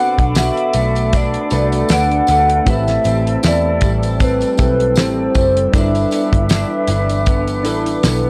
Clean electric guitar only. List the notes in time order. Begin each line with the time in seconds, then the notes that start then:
Already playing: B2 C4 F#4
0.19 D4
0.37 F#4
0.75 A3
1.14 D4
1.52 A3
1.91 D4
2.29 A3
2.67 A2 E4
3.05 C4
3.43 E4
3.82 G3
4.20 C4
4.59 G3
4.97 C4
5.36 G3
5.73 G2 D4
6.12 B3
6.51 D4
6.90 E3
7.28 B3
7.67 E3
8.05 B3